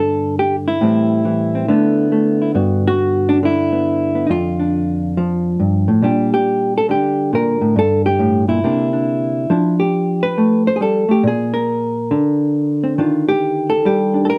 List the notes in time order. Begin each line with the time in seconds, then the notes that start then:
Already playing: G2 D3 B3 D4 A4
0.39 G4
0.68 E4
0.81 A2 E3 G3 C4
1.25 E3
1.55 C4
1.68 D3 A3 B3
2.12 A3
2.42 E4
2.55 G2 B3 F#4
2.88 F#4
3.29 D4
3.43 D3 E4
3.72 B3
4.15 B3
4.27 F2 D#4
4.31 F4
4.60 D4
5.17 F3
5.60 G2
5.88 A2
6.02 A#2 G3 D4 G4
6.34 G4
6.78 A4
6.89 D3 G4
7.33 A#2 A#4
7.61 A2
7.76 G2 A4
8.06 G4
8.19 A2
8.48 A#2 E4
8.64 C3 A#3 D4
8.93 D4
9.50 F3 D4 E4
9.80 G4
10.23 B4
10.38 A3
10.67 C5
10.76 G#4
10.81 G3 A4
11.09 A3 G4
11.23 A#2
11.27 G#4
11.54 A#4
12.11 D3
12.84 C4
12.98 D#3 D4 F4
13.29 G4
13.70 A4
13.85 G3 G4
14.14 D4
14.25 A4
14.30 A#4